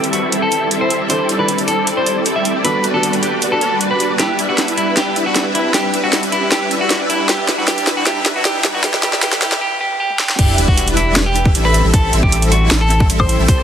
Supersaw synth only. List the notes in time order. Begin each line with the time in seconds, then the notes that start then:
Already playing: G3 C4 E4 A4 E5
0.32 G3 C4 E4 A4 E5
0.71 G3 C4 E4 A4 E5
1.00 G3 C4 E4 A4 E5
1.10 G3 C4 E4 A4 D5
1.29 G3 C4 E4 A4 D5
1.39 G3 C4 E4 A4 D5
1.87 G3 C4 E4 A4 D5
2.26 G3 C4 E4 A4 D5
2.55 G3 C4 E4 A4 D5
2.65 G3 D4 F#4 B4 D5
2.84 G3 D4 F#4 B4 D5
2.94 G3 D4 F#4 B4 D5
3.42 G3 D4 F#4 B4 D5
3.61 G3 D4 F#4 B4 D5
4.00 G3 D4 F#4 B4 D5
4.19 G3 D4 E4 B4 E5
4.39 G3 D4 E4 B4 E5
4.49 G3 D4 E4 B4 E5
4.97 G3 D4 E4 B4 E5
5.16 G3 D4 E4 B4 E5
5.26 G3 D4 E4 B4 E5
5.74 G3 D4 E4 B4 E5
5.94 G3 D4 E4 B4 E5
6.04 G3 D4 E4 B4 E5
6.52 G3 D4 E4 B4 E5
6.71 G3 D4 E4 B4 E5
6.81 G3 D4 E4 B4 E5
7.29 G3 D4 E4 B4 E5
7.48 G3 D4 E4 B4 E5
7.58 G3 D4 E4 B4 E5
7.68 G3 D4 E4 B4 E5
7.87 G3 D4 E4 B4 E5
7.97 G3 D4 E4 B4 E5
8.07 G3 D4 E4 B4 E5
8.26 G3 D4 E4 B4 E5
8.36 G3 D4 E4 B4 E5
8.45 G3 D4 E4 B4 E5
8.65 G3 D4 E4 B4 E5
8.75 G3 D4 E4 B4 E5
8.84 G3 D4 E4 B4 E5
9.03 G3 D4 E4 B4 E5
9.23 G3 D4 E4 B4 E5
9.42 G3 D4 E4 B4 E5
10.39 G3 D4 E4 B4 E5
10.58 G3 D4 E4 B4 E5
10.68 G3 D4 E4 B4 E5
11.16 G3 D4 B4 E5
11.55 G3 C4 E4 A4 E5
11.84 G3 C4 E4 A4 E5
11.94 G3 C4 E4 A4 E5
12.13 G3 C4 E4 A4 E5
12.23 G3 C4 E4 A4 E5
12.71 G3 C4 E4 A4 E5
13.10 G3 C4 E4 A4 E5
13.39 G3 C4 E4 A4 E5
13.48 G3 C4 E4 A4